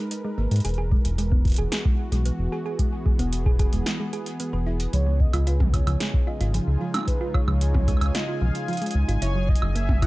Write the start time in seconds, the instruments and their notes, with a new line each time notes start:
Already playing: analog synth pad G#3 D#4 A#4 B4
0.11 closed hi-hat
0.25 synth arpeggio sound G#3
0.38 analog synth bass G#1, synth arpeggio sound A#3
0.51 analog synth bass G#2, closed hi-hat
0.56 closed hi-hat
0.60 closed hi-hat
0.65 analog synth bass E1, analog synth pad E3, synth arpeggio sound G#4, closed hi-hat
0.69 closed hi-hat
0.74 closed hi-hat
0.78 synth arpeggio sound G#4
0.92 synth arpeggio sound G#3, kick
1.05 analog synth bass E1, analog synth pad B3, closed hi-hat
1.18 synth arpeggio sound G#3, closed hi-hat
1.32 synth arpeggio sound B3, kick
1.39 analog synth pad F#4
1.45 kick, closed hi-hat
1.47 closed hi-hat
1.50 closed hi-hat
1.52 closed hi-hat
1.54 closed hi-hat
1.56 analog synth bass E1, synth arpeggio sound G#4, closed hi-hat
1.72 synth arpeggio sound G#4, snare, closed hi-hat
1.85 synth arpeggio sound G#3, kick
2.12 analog synth bass B1, synth arpeggio sound G#3, closed hi-hat
2.25 synth arpeggio sound B3, closed hi-hat
2.32 analog synth pad G#4
2.39 analog synth bass E1
2.52 synth arpeggio sound G#4
2.66 synth arpeggio sound G#4
2.79 synth arpeggio sound G#3, kick, closed hi-hat
3.06 synth arpeggio sound G#3, kick
3.19 analog synth bass E1, synth arpeggio sound B3, closed hi-hat
3.33 closed hi-hat
3.46 synth arpeggio sound G#4, kick
3.59 synth arpeggio sound G#4, kick, closed hi-hat
3.73 analog synth bass E1, synth arpeggio sound G#3, closed hi-hat
3.86 snare, closed hi-hat
4.00 synth arpeggio sound G#3
4.13 synth arpeggio sound G#4, closed hi-hat
4.26 closed hi-hat
4.40 synth arpeggio sound B3, closed hi-hat
4.53 analog synth bass E1, synth arpeggio sound B4
4.67 synth arpeggio sound E4
4.80 closed hi-hat
4.93 analog synth bass C#2, analog synth pad C#3, synth arpeggio sound F3, synth texture G#4 G#5, soft synth lead C#5, closed hi-hat
5.07 synth arpeggio sound G#3
5.20 soft synth lead D#5, kick
5.33 analog synth bass C#2, synth arpeggio sound F4, closed hi-hat, high woodblock
5.47 analog synth pad G#3, synth arpeggio sound F4, soft synth lead B4, closed hi-hat
5.60 synth arpeggio sound F3, kick, mid tom
5.74 soft synth lead C#5, kick, closed hi-hat, high woodblock
5.87 analog synth bass C#2, synth arpeggio sound F3, closed hi-hat, high woodblock
6.00 synth arpeggio sound G#3, analog synth pad D#4, snare, closed hi-hat
6.14 kick
6.20 analog synth pad F4
6.27 synth arpeggio sound F4, soft synth lead D#5
6.41 analog synth bass G#1, synth arpeggio sound F4, closed hi-hat
6.54 synth arpeggio sound F3, soft synth lead G#4, closed hi-hat
6.67 analog synth bass C#2
6.81 synth arpeggio sound F3
6.94 synth arpeggio sound G#3, closed hi-hat, mid tom, high woodblock
6.96 high woodblock
6.99 high woodblock
7.01 high woodblock
7.07 soft synth lead B4, kick, closed hi-hat
7.21 synth arpeggio sound F4
7.34 synth arpeggio sound F4, soft synth lead C#5, kick, high woodblock
7.48 analog synth bass C#2, synth arpeggio sound F3, high woodblock
7.61 closed hi-hat
7.74 synth arpeggio sound F3, kick, mid tom
7.88 synth arpeggio sound G#3, kick, closed hi-hat, high woodblock
7.97 high woodblock
8.01 analog synth bass C#2, closed hi-hat, high woodblock
8.06 high woodblock
8.15 synth arpeggio sound F4, soft synth lead D#5, snare, closed hi-hat
8.28 synth arpeggio sound F4
8.41 analog synth bass B1, synth arpeggio sound F3, soft synth lead F5
8.55 closed hi-hat
8.68 synth arpeggio sound F3, closed hi-hat
8.73 closed hi-hat
8.77 closed hi-hat
8.82 synth arpeggio sound G#3, closed hi-hat
8.86 closed hi-hat
8.91 closed hi-hat
8.95 analog synth bass C#2
9.08 analog synth bass G#1, synth arpeggio sound F4, closed hi-hat
9.22 analog synth bass F#1, analog synth pad F#3, synth arpeggio sound E4, soft synth lead C#5, closed hi-hat
9.35 synth arpeggio sound F#3
9.48 analog synth pad G#4, soft synth lead D#5, kick
9.55 closed hi-hat
9.62 analog synth bass F#1, synth arpeggio sound F#3, high woodblock
9.75 synth arpeggio sound A#3, analog synth pad A#4, soft synth lead E5, closed hi-hat
9.82 analog synth pad C#4
9.89 kick, mid tom
10.02 synth arpeggio sound E4, soft synth lead F#5, kick, closed hi-hat, high woodblock